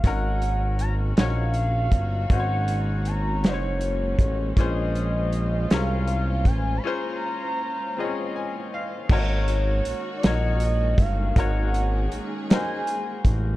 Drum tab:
CC |------|------|------|------|
HH |xxxxxx|xxxxxx|xxxxxx|------|
SD |---o--|---o--|---o--|------|
BD |o----o|o----o|o----o|------|

CC |x-----|------|
HH |-xxxxx|xxxxxx|
SD |---o--|---o--|
BD |o----o|o----o|